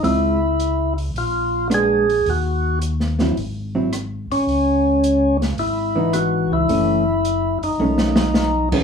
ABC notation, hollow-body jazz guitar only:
X:1
M:4/4
L:1/8
Q:"Swing" 1/4=108
K:C#m
V:1 name="Hollow-body jazz guitar"
[G,^B,^E] z4 z [G,=B,=D] z | z3 [F,^B,E] z [F,B,E] z2 | z4 z [E,B,D]3 | [E,A,C] z3 [D,A,C] z2 [E,B,CG] |]